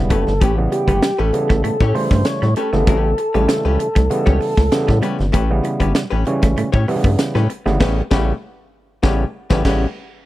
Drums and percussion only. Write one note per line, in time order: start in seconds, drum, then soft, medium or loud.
0.10 kick loud
0.10 closed hi-hat medium
0.27 snare soft
0.41 kick loud
0.41 closed hi-hat medium
0.72 closed hi-hat medium
0.88 kick medium
0.88 closed hi-hat soft
1.02 snare loud
1.02 closed hi-hat medium
1.34 closed hi-hat medium
1.50 kick loud
1.50 snare soft
1.64 closed hi-hat medium
1.80 kick loud
1.95 open hi-hat medium
2.11 kick loud
2.11 snare soft
2.25 snare loud
2.25 closed hi-hat medium
2.42 snare soft
2.56 closed hi-hat medium
2.73 snare soft
2.87 kick loud
2.87 closed hi-hat medium
3.18 closed hi-hat medium
3.35 closed hi-hat soft
3.49 snare loud
3.49 closed hi-hat loud
3.80 closed hi-hat medium
3.96 kick loud
3.96 snare soft
3.96 closed hi-hat medium
4.11 closed hi-hat medium
4.27 kick loud
4.42 open hi-hat medium
4.57 kick loud
4.57 snare soft
4.72 snare loud
4.72 closed hi-hat loud
4.89 kick medium
4.89 snare soft
5.03 closed hi-hat medium
5.20 snare soft
5.34 kick loud
5.34 closed hi-hat medium
5.64 closed hi-hat medium
5.80 kick medium
5.80 closed hi-hat soft
5.95 snare loud
5.95 closed hi-hat medium
6.26 closed hi-hat medium
6.42 kick loud
6.42 snare soft
6.42 closed hi-hat medium
6.57 closed hi-hat medium
6.74 kick loud
6.89 open hi-hat medium
7.04 kick loud
7.18 snare loud
7.18 closed hi-hat loud
7.36 snare soft
7.50 closed hi-hat medium
7.67 snare soft
7.81 kick loud
7.81 snare loud
7.81 crash medium
8.11 kick loud
8.11 snare loud
9.03 kick loud
9.03 snare loud
9.51 kick loud
9.51 snare loud
9.65 kick loud
9.65 snare loud
9.65 crash medium